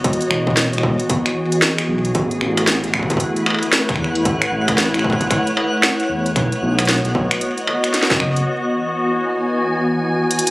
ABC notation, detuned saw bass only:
X:1
M:4/4
L:1/16
Q:"Swing 16ths" 1/4=114
K:Alyd
V:1 name="Detuned saw bass" clef=bass
E,,, z E,,,3 E,,, E,,, z6 z B,,,2 | A,,, z A,,,3 A,,, A,,, z6 z E,,2 | A,,, z A,,,3 A,,, A,,, z6 z E,,2 | B,,, z B,,,3 B,,, B,,, z6 z F,,,2 |
z16 |]